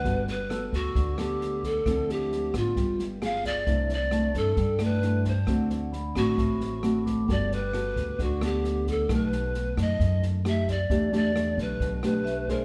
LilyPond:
<<
  \new Staff \with { instrumentName = "Vibraphone" } { \time 4/4 \key g \major \tempo 4 = 133 r4 e'''4 r8 d'''4 r8 | r1 | r4 a''4 r2 | r4 b''4 r4. d'''8~ |
d'''8 r2. r8 | r1 | r2. e''4 | }
  \new Staff \with { instrumentName = "Pan flute" } { \time 4/4 \key g \major b'8 b'4 fis'4 g'4 a'8~ | a'8 g'4 f'4. f''8 d''8~ | d''8 d''4 a'4 b'4 c''8~ | c''8 r4 fis'2 r8 |
d''8 b'4. fis'8 g'4 a'8 | b'4. dis''4. e''8 d''8~ | d''8 d''4 b'4 b'4 bes'8 | }
  \new Staff \with { instrumentName = "Nylon-string guitar" } { \time 4/4 \key g \major << { <b fis' a'>8 r8 <b fis' a'>4. <b a'>4. | <f c' e'>4. <b f'>4. <b f' aes'>4 | <a d' e'>8 r8 <a d' e'>4 r8 <a d' e'>8 <a d' e'>8 r8 | <a c' fis'>4 r8 <a c' fis'>4. <a c' fis'>4 |
<b fis' a'>8 r8 <b fis' a'>4. <b a'>4. | <a dis' g'>4 r8 <a dis'>4. <a dis' g'>8 r8 | <a d' g'>8 <a d' g'>8 <a d' g'>4. <a d' g'>4 <d' aes' c''>8 | } \\ { g2 d2 | d2 g2 | c2 g2 | d2 a,2 |
g2 d2 | b,2 r2 | e2 b,2 | } >> }
  \new Staff \with { instrumentName = "Upright bass" } { \clef bass \time 4/4 \key g \major g,,4. d,8 d,2 | d,4. a,,8 g,,2 | c,4. g,8 g,2 | d,4. a,,8 a,,2 |
g,,4. d,8 d,2 | b,,4. fis,8 fis,2 | e,4. b,,8 b,,2 | }
  \new DrumStaff \with { instrumentName = "Drums" } \drummode { \time 4/4 <bd sn>8 sn8 <ss sn>8 <bd sn>8 <bd sn>8 <ss sn>8 sn8 <bd sn>8 | <bd ss sn>8 sn8 sn8 <bd ss sn>8 <bd sn>8 sn8 <ss sn>8 <bd sn>8 | <bd sn>8 sn8 <ss sn>8 <bd sn>8 <bd sn>8 <ss sn>8 sn8 <bd sn>8 | <bd ss sn>8 sn8 sn8 <bd ss sn>8 <bd sn>8 sn8 <ss sn>8 <bd sn>8 |
<bd sn>8 sn8 <ss sn>8 <bd sn>8 <bd sn>8 <ss sn>8 sn8 <bd sn>8 | <bd ss sn>8 sn8 sn8 <bd ss sn>8 <bd sn>8 sn8 <ss sn>8 <bd sn>8 | <bd sn>8 sn8 <ss sn>8 <bd sn>8 <bd sn>8 <ss sn>8 sn8 <bd sn>8 | }
>>